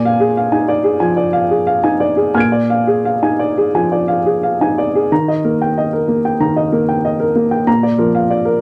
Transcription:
0.00 0.98 A#2 medium
0.00 0.15 D5 soft
0.00 0.52 G#5 medium
0.05 0.31 F5 soft
0.20 0.46 G#4 soft
0.37 0.63 F5 soft
0.52 0.69 D#4 soft
0.52 0.78 G#5 soft
0.68 0.94 D5 soft
0.84 1.11 G#4 soft
1.00 1.27 F3 soft
1.00 1.27 G#5 soft
1.17 1.44 D5 soft
1.33 1.60 F5 soft
1.51 1.77 G#4 soft
1.67 1.94 F5 soft
1.84 2.01 D#4 soft
1.84 2.11 G#5 soft
2.00 2.28 D5 soft
2.17 2.45 G#4 soft
2.34 3.69 A#2 soft
2.34 2.62 G#5 soft
2.34 5.06 F6 soft
2.34 5.08 G#6 soft
2.40 5.09 D7 soft
2.52 2.80 D5 soft
2.70 2.97 F5 soft
2.87 3.15 G#4 soft
3.05 3.32 F5 soft
3.22 3.39 D#4 soft
3.22 3.50 G#5 soft
3.39 3.67 D5 soft
3.58 3.85 G#4 soft
3.75 4.02 F3 soft
3.75 4.02 G#5 soft
3.92 4.19 D5 soft
4.08 4.35 F5 soft
4.26 4.53 G#4 soft
4.43 4.70 F5 soft
4.61 4.77 D#4 soft
4.61 4.88 G#5 soft
4.78 5.04 D5 soft
4.95 5.11 G#4 soft
5.12 6.36 D#3 soft
5.12 5.38 A#5 soft
5.28 5.54 D#5 soft
5.44 5.96 A#3 soft
5.44 5.70 A#4 soft
5.61 5.86 G5 soft
5.78 6.02 D#5 soft
5.93 6.18 A#4 soft
6.08 6.33 A#3 soft
6.25 6.50 G5 soft
6.40 7.63 D#3 soft
6.40 6.65 A#5 soft
6.56 6.81 D#5 soft
6.72 7.23 A#3 soft
6.72 6.97 A#4 soft
6.89 7.13 G5 soft
7.05 7.29 D#5 soft
7.20 7.45 A#4 soft
7.36 7.61 A#3 soft
7.51 7.67 G5 soft
7.67 8.61 A#2 soft
7.67 7.92 A#5 medium
7.83 8.08 D5 soft
7.98 8.48 F3 soft
7.98 8.23 A#4 soft
8.15 8.39 F5 soft
8.30 8.54 D5 soft
8.45 8.61 A#4 soft

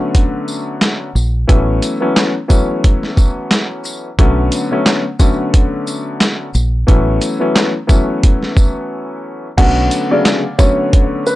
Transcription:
0.00 1.06 D3 loud
0.00 1.06 F#3 medium
0.00 1.06 A3 medium
0.00 1.07 B3 medium
0.00 1.07 C#4 medium
0.15 kick medium
0.15 closed hi-hat medium
0.48 tambourine soft
0.81 snare loud
0.81 clap medium
0.81 closed hi-hat medium
1.15 1.45 A#1 medium
1.15 tambourine medium
1.47 1.79 A1 loud
1.47 1.97 E3 loud
1.47 1.97 F#3 medium
1.47 1.97 A3 medium
1.47 1.97 B3 medium
1.47 1.98 C#4 loud
1.47 kick loud
1.47 closed hi-hat medium
1.82 closed hi-hat medium
1.82 tambourine medium
1.82 shaker medium
2.00 2.32 E3 medium
2.00 2.32 F#3 medium
2.00 2.32 A3 medium
2.00 2.33 B3 medium
2.00 2.33 C#4 loud
2.17 snare loud
2.17 clap medium
2.17 closed hi-hat medium
2.48 4.06 E3 medium
2.48 4.07 F#3 medium
2.48 4.07 A3 medium
2.48 4.07 B3 medium
2.48 4.07 C#4 loud
2.48 kick medium
2.48 closed hi-hat soft
2.48 tambourine medium
2.48 shaker soft
2.84 kick medium
2.84 closed hi-hat medium
3.03 snare soft
3.17 kick medium
3.17 tambourine soft
3.17 shaker soft
3.51 snare loud
3.51 clap medium
3.51 closed hi-hat medium
3.84 tambourine medium
3.84 shaker medium
4.19 4.49 B1 loud
4.19 4.67 D3 loud
4.19 4.67 F#3 medium
4.19 4.68 A3 medium
4.19 4.68 B3 loud
4.19 4.68 C#4 loud
4.19 kick loud
4.19 closed hi-hat medium
4.52 closed hi-hat medium
4.52 tambourine medium
4.52 shaker medium
4.71 5.02 D3 medium
4.71 5.02 F#3 medium
4.71 5.02 A3 medium
4.71 5.03 B3 medium
4.71 5.03 C#4 loud
4.86 snare loud
4.86 clap loud
4.86 closed hi-hat medium
5.19 6.45 D3 loud
5.19 6.46 F#3 medium
5.19 6.46 A3 medium
5.19 6.46 B3 medium
5.19 6.46 C#4 medium
5.19 kick medium
5.19 closed hi-hat soft
5.19 tambourine medium
5.19 shaker soft
5.54 kick medium
5.54 closed hi-hat medium
5.87 tambourine soft
5.87 shaker soft
6.21 snare loud
6.21 clap medium
6.21 closed hi-hat medium
6.54 6.84 A#1 loud
6.54 tambourine medium
6.54 shaker medium
6.87 7.18 A1 loud
6.87 7.36 E3 loud
6.87 7.36 F#3 medium
6.87 7.37 A3 loud
6.87 7.37 B3 medium
6.87 7.37 C#4 loud
6.87 kick loud
6.87 closed hi-hat medium
7.21 closed hi-hat medium
7.21 tambourine medium
7.21 shaker medium
7.40 7.71 E3 medium
7.40 7.71 F#3 medium
7.40 7.72 A3 medium
7.40 7.72 B3 medium
7.40 7.72 C#4 loud
7.56 snare loud
7.56 clap medium
7.56 closed hi-hat medium
7.87 9.46 E3 medium
7.87 9.46 F#3 medium
7.87 9.46 A3 medium
7.87 9.46 B3 medium
7.87 9.46 C#4 loud
7.87 kick medium
7.87 closed hi-hat soft
7.87 tambourine medium
7.87 shaker soft
8.23 kick medium
8.23 closed hi-hat medium
8.43 snare soft
8.57 kick medium
8.57 tambourine soft
8.57 shaker soft
9.57 9.88 B1 loud
9.57 10.06 D3 loud
9.57 10.07 F#3 medium
9.57 10.07 A3 medium
9.57 10.07 B3 loud
9.57 10.07 C#4 loud
9.57 10.08 F#5 medium
9.57 kick loud
9.57 closed hi-hat loud
9.57 crash loud
9.91 closed hi-hat medium
9.91 tambourine medium
9.91 shaker medium
10.10 10.42 C#3 loud
10.10 10.41 D3 medium
10.10 10.42 F#3 medium
10.10 10.42 A3 medium
10.10 10.42 B3 medium
10.10 10.56 D5 medium
10.25 snare loud
10.25 clap loud
10.25 closed hi-hat medium
10.59 11.36 D3 loud
10.59 11.36 F#3 medium
10.59 11.36 A3 medium
10.59 11.36 B3 medium
10.59 11.36 C#4 medium
10.59 11.22 C#5 medium
10.59 kick medium
10.59 closed hi-hat soft
10.59 tambourine medium
10.59 shaker soft
10.93 kick medium
10.93 closed hi-hat medium
11.26 11.36 B4 medium
11.26 tambourine medium
11.26 shaker soft

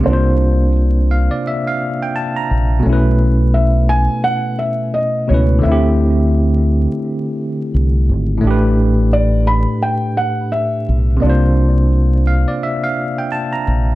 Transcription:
0.00 2.78 C3 medium
0.00 2.80 A#3 medium
0.06 1.27 C2 loud
0.06 2.81 D4 medium
0.06 0.71 C5 medium
0.10 2.83 F4 medium
0.10 2.85 C5 medium
1.11 1.30 F5 medium
1.31 1.44 D5 medium
1.47 1.65 E5 medium
1.67 1.99 F5 medium
2.02 2.15 G5 medium
2.16 2.34 A5 medium
2.36 2.82 A#5 medium
2.51 2.80 A#1 medium
2.79 5.22 B2 medium
2.79 5.24 A3 medium
2.86 4.07 B1 loud
2.86 5.26 C#4 medium
2.86 5.27 E4 medium
2.93 5.29 B4 medium
3.54 3.90 E5 medium
3.89 4.22 G#5 loud
4.24 4.60 F#5 loud
4.59 4.95 E5 medium
4.94 5.30 D#5 loud
5.28 5.59 C#2 medium
5.28 5.63 B2 medium
5.28 5.61 A3 medium
5.28 5.65 C#4 medium
5.28 5.65 C#5 medium
5.32 5.66 E4 soft
5.32 5.66 B4 medium
5.59 8.36 D3 medium
5.59 8.38 A3 medium
5.63 6.86 D2 loud
5.63 8.40 C4 medium
5.63 6.29 E5 medium
5.68 8.41 E4 medium
5.68 8.43 G4 medium
7.74 8.11 C2 medium
8.09 8.38 G#1 medium
8.38 11.15 A2 medium
8.38 11.17 A3 medium
8.44 9.65 A1 loud
8.44 11.19 D4 medium
8.44 11.20 G4 medium
8.51 11.22 B4 medium
9.13 9.45 D5 medium
9.47 9.83 B5 loud
9.83 10.18 G5 loud
10.17 10.50 F#5 loud
10.52 11.24 E5 loud
10.89 11.18 B1 medium
11.17 13.94 C3 medium
11.17 13.95 A#3 medium
11.22 12.44 C2 loud
11.22 13.95 D4 medium
11.22 11.88 D5 medium
11.27 13.95 F4 medium
11.27 13.95 C5 medium
12.27 12.46 F5 medium
12.48 12.61 D5 medium
12.63 12.82 E5 medium
12.84 13.15 F5 medium
13.18 13.31 G5 medium
13.32 13.51 A5 medium
13.53 13.95 A#5 medium
13.68 13.95 A#1 medium

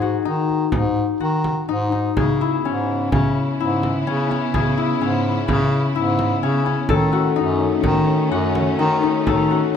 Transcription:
0.00 0.20 G#2 medium
0.00 0.25 D#4 medium
0.00 1.20 F#4 medium
0.00 2.06 G#4 medium
0.00 frame drum soft
0.25 0.68 D#3 medium
0.25 0.73 D#4 medium
0.49 frame drum soft
0.72 1.08 G#2 medium
0.72 1.68 D#4 medium
0.72 frame drum medium
0.96 frame drum soft
1.20 1.63 D#3 medium
1.20 3.64 F#4 medium
1.20 frame drum soft
1.44 frame drum soft
1.68 2.11 G#2 medium
1.68 1.92 D#4 medium
1.92 2.47 D#4 medium
1.92 frame drum soft
2.17 2.60 C#3 medium
2.17 6.86 C#3 medium
2.17 6.86 B3 medium
2.17 6.86 E4 medium
2.17 4.44 G#4 medium
2.17 frame drum medium
2.41 3.60 E4 medium
2.65 3.07 G#2 medium
2.65 3.12 C#4 medium
3.12 3.54 C#3 medium
3.12 4.07 C#4 medium
3.12 frame drum medium
3.59 4.01 G#2 medium
3.59 4.77 E4 medium
3.83 frame drum soft
4.07 4.48 C#3 medium
4.07 4.31 C#4 medium
4.31 5.01 C#4 medium
4.31 frame drum soft
4.54 4.96 C#3 medium
4.54 6.82 G#4 medium
4.54 frame drum medium
4.78 5.95 E4 medium
5.01 5.43 G#2 medium
5.01 5.48 C#4 medium
5.48 5.90 C#3 medium
5.48 6.43 C#4 medium
5.48 frame drum medium
5.95 6.37 G#2 medium
5.95 7.42 E4 medium
6.19 frame drum soft
6.43 6.85 C#3 medium
6.43 6.66 C#4 medium
6.66 9.56 C#4 medium
6.66 frame drum soft
6.89 7.31 D#3 medium
6.89 9.77 D#3 medium
6.89 9.77 A3 medium
6.89 9.77 C#4 medium
6.89 9.09 A4 medium
6.89 frame drum medium
7.13 8.31 F#4 medium
7.36 7.79 F#2 medium
7.36 7.83 D#4 medium
7.84 8.26 D#3 medium
7.84 8.79 D#4 medium
7.84 frame drum medium
8.31 8.74 F#2 medium
8.31 9.50 F#4 medium
8.55 frame drum soft
8.79 9.21 D#3 medium
8.79 9.03 D#4 medium
9.03 9.74 D#4 medium
9.03 frame drum soft
9.27 9.62 D#3 medium
9.27 9.77 A4 medium
9.27 frame drum medium
9.51 9.77 F#4 medium

